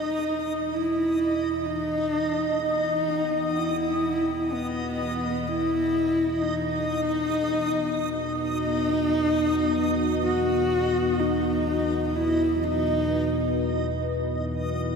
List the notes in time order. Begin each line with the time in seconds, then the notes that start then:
Already playing: E2 B2 E3 D#4 D#5
0.12 B4
0.69 F#5
0.74 E4
1.66 D#4
2.18 G5
2.63 D#4
3.58 E4
4.53 B3
5.47 E4
6.41 B3 D#4
7.01 F#4
8.33 D#4
9.87 D#5
10.26 F#4
11.19 D#4
12.16 E4
12.64 D#4
14.04 E4 F#5
14.38 F#5